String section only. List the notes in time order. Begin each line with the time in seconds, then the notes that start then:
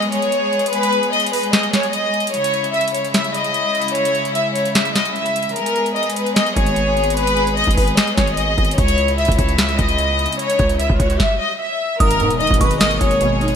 Already playing: G#3 B3 G#4
2.34 C#3 G#3 E4
5.56 G#3 B3 G#4
8.78 C#3 G#3 E4
12.00 B2 G#3 G#4